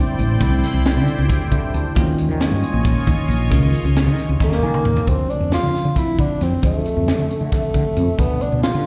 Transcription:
Already playing: tine electric piano D3 G3 A3 C4 D4, analog synth pad E4 C5 D5 G5
0.07 muted fretless electric bass stroke
0.19 fretless electric bass A1, closed hi-hat
0.39 fretless electric bass C2, tine electric piano D3 G3 A3 C4 E4, kick, closed hi-hat
0.64 snare, closed hi-hat
0.73 fretless electric bass C2
0.85 tine electric piano D3 G3 A3 C4 E4, snare, closed hi-hat
0.96 fretless electric bass D3
1.08 closed hi-hat
1.18 fretless electric bass D2
1.28 tine electric piano D3 G3 A3 C4 G4, kick, snare, closed hi-hat
1.51 fretless electric bass D3, tine electric piano E5, kick, closed hi-hat
1.74 fretless electric bass D2, tine electric piano A5, closed hi-hat
1.95 fretless electric bass D#2, tine electric piano D#3 G#3 A#3 C#4 F4, analog synth pad F4 C#5 D#5 G#5, kick, closed hi-hat
2.18 closed hi-hat
2.29 fretless electric bass D#3
2.40 tine electric piano D#3 G#3 A#3 C#4 F4, snare, closed hi-hat
2.51 fretless electric bass G2
2.63 closed hi-hat
2.73 fretless electric bass A#1
2.84 tine electric piano D#3 G#3 A#3 C#4 D#4, kick, closed hi-hat
2.96 muted fretless electric bass stroke
3.07 fretless electric bass D#2, kick, closed hi-hat
3.18 muted fretless electric bass stroke
3.28 fretless electric bass A#1, closed hi-hat
3.50 fretless electric bass C#2, tine electric piano D#3 G#3 A#3 C#4 F4, kick, closed hi-hat
3.74 closed hi-hat
3.85 fretless electric bass C#2
3.95 tine electric piano D#3 G#3 A#3 C#4 G#4, snare, closed hi-hat
4.07 fretless electric bass D#3
4.18 snare, closed hi-hat
4.29 fretless electric bass D#2
4.40 tine electric piano D#3 G#3 A#3 C#4 D#4, tenor saxophone A#3, kick, snare
4.52 snare
4.63 fretless electric bass D#3, tine electric piano G#5
4.74 mid tom
4.84 fretless electric bass D#2, tine electric piano F5, mid tom
4.97 floor tom
5.06 fretless electric bass D2, tine electric piano D3 F3 A3 C4 F4, tenor saxophone C4, kick, closed hi-hat
5.30 tenor saxophone D4, closed hi-hat
5.40 fretless electric bass F2
5.51 tine electric piano D3 F3 A3 C4 F4, tenor saxophone F4, snare, closed hi-hat
5.63 fretless electric bass D3
5.75 snare, closed hi-hat
5.85 fretless electric bass D3
5.95 tine electric piano D3 F3 A3 C4 F4, tenor saxophone E4, kick, snare, closed hi-hat
6.18 fretless electric bass D3, tenor saxophone D4, kick, closed hi-hat
6.41 fretless electric bass F2, tenor saxophone C4, snare, closed hi-hat
6.62 fretless electric bass D2, tine electric piano D3 F3 A3 C4 F4, tenor saxophone A3, kick, closed hi-hat
6.86 closed hi-hat
6.97 fretless electric bass F2
7.07 tine electric piano D3 F3 A3 C4 D4, snare, closed hi-hat
7.18 fretless electric bass D3
7.30 closed hi-hat
7.41 fretless electric bass D3
7.51 tine electric piano D3 F3 A3 C4 G4, tenor saxophone A3, kick, snare, closed hi-hat
7.74 fretless electric bass D3, kick, closed hi-hat
7.97 fretless electric bass F2, closed hi-hat
8.18 fretless electric bass D2, tine electric piano B2 F3 G3 A3 D4, tenor saxophone B3, kick, closed hi-hat
8.41 tenor saxophone D4, closed hi-hat
8.52 fretless electric bass B2
8.62 tine electric piano B2 F3 G3 A3 F4, tenor saxophone F4, snare, closed hi-hat
8.74 fretless electric bass D3

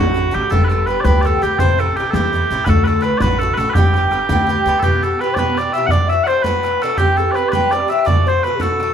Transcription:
Already playing: upright bass A1, bouzouki A2 D3 A3 F#4, flute F#4, bagpipes F#4
0.14 bouzouki A2 D3 A3 F#4, bodhran
0.31 upright bass A1, bouzouki A2 D3 A3 F#4, flute G4, bagpipes G4, bodhran
0.50 upright bass G1, bouzouki G2 D3 B3 G4, bagpipes A4, flute A4, bodhran
0.64 bagpipes A4 B4
0.70 bouzouki G2 D3 B3 G4, flute A4, bodhran
0.86 bouzouki G2 D3, bagpipes B4, flute B4, bodhran
0.90 bouzouki B3 G4
1.00 bagpipes B4 D5, flute C5
1.04 upright bass D2, bouzouki G2 D3 B3 G4, flute B4, bodhran
1.21 bouzouki G2 D3, bagpipes D5
1.25 bouzouki B3 G4, bagpipes A4, flute A4, bodhran
1.42 upright bass D2, bouzouki G2 D3 B3 G4, bagpipes G4, flute G4
1.59 upright bass A1, bouzouki C3 E3 A3 E4, bagpipes C5, flute C5, bodhran
1.78 bouzouki C3 E3 A3 E4, bagpipes A4, flute A4, bodhran
1.96 bouzouki C3 E3 A3, bagpipes G4, flute G4, bodhran
2.00 bouzouki E4
2.09 flute A4, bagpipes A4
2.13 upright bass E2, bouzouki C3 E3 A3 E4, flute G4, bagpipes G4, bodhran
2.33 bouzouki C3 E3 A3 E4, bodhran
2.50 upright bass A1, bouzouki C3 E3 A3 E4
2.65 upright bass D2, bouzouki A2 D3 A3 F#4, flute A4, bagpipes B4, bodhran
2.69 bagpipes A4
2.84 bouzouki A2 D3 A3, flute A4, bagpipes A4 B4, bodhran
2.89 bouzouki F#4
3.01 bouzouki A2 D3 A3 F#4, bagpipes B4, flute B4, bodhran
3.18 upright bass A1, bouzouki A2 D3, bagpipes B4 D5, bodhran
3.22 bouzouki A3 F#4, flute B4
3.39 bouzouki A2 D3 A3, bagpipes A4, flute A4, bodhran
3.43 bouzouki F#4
3.54 upright bass A1, bouzouki A2, bagpipes A4 B4
3.58 bouzouki D3 A3 F#4, flute A4
3.69 bagpipes G4 B4
3.75 upright bass G1, bouzouki G2 D3 B3 G4, flute G4, bodhran
3.94 bouzouki G2 D3 B3 G4, bodhran
4.11 bouzouki G2 D3 B3 G4, bodhran
4.29 upright bass D2, bouzouki G2 D3 B3 G4, bodhran
4.47 bouzouki G2 D3 B3 G4, bodhran
4.66 upright bass D2, bouzouki G2 D3 B3 G4
4.79 bouzouki B2, flute G4, bagpipes G4 A4, bodhran
4.84 bouzouki E3 B3 G4
4.93 bodhran
5.03 bouzouki B2 E3 B3 G4, bagpipes A4
5.19 bouzouki B2 E3, flute B4, bagpipes B4, bodhran
5.24 bouzouki B3 G4
5.31 flute C5, bagpipes D5
5.36 bouzouki B2 E3 B3 G4, flute B4, bagpipes B4, bodhran
5.55 bouzouki B2 E3, bagpipes D5, flute D5, bodhran
5.59 bouzouki B3 G4
5.72 bouzouki B2 E3, flute E5, bagpipes E5, bodhran
5.77 bouzouki B3 G4, bodhran
5.86 bagpipes F#5, bodhran
5.90 bouzouki A2 E3 D4 F#4, flute D5, bagpipes D5
5.98 bodhran
6.07 bouzouki A2 E3, flute E5, bagpipes E5
6.12 bouzouki D4 F#4
6.24 bouzouki A2, flute C5, bagpipes C5 F#5, bodhran
6.28 bouzouki E3 D4 F#4
6.38 flute C5
6.42 bouzouki A2 E3 D4 F#4, bagpipes B4, flute B4, bodhran
6.63 bouzouki A2 E3 D4 F#4, bodhran
6.82 bouzouki A2 E3 D4 F#4, bagpipes A4, flute A4, bodhran
6.90 bodhran
6.97 bouzouki G2 E3 C4 G4, bagpipes G4, flute G4, bodhran
7.09 bodhran
7.17 bouzouki G2 E3 C4 G4, bagpipes A4, flute A4
7.31 bouzouki G2, flute B4 C5, bagpipes B4 D5, bodhran
7.36 bouzouki E3 C4 G4
7.49 bouzouki G2, bagpipes B4 D5
7.53 bouzouki E3 C4 G4, flute B4, bodhran
7.71 bouzouki G2 E3 C4 G4, bagpipes D5, flute D5, bodhran
7.88 bouzouki G2 E3 C4 G4, bagpipes E5, flute E5, bodhran
7.99 bodhran
8.05 bouzouki B2 D3 A3 F#4, bagpipes D5, flute D5, bodhran
8.17 bodhran
8.26 bouzouki B2 D3 A3 F#4, flute C5, bagpipes C5
8.43 bouzouki B2 D3 A3 F#4, bagpipes B4, flute B4, bodhran
8.55 flute G4
8.59 bouzouki B2 D3 A3 F#4, flute A4, bagpipes A4, bodhran
8.80 bouzouki B2 D3 A3 F#4, bodhran

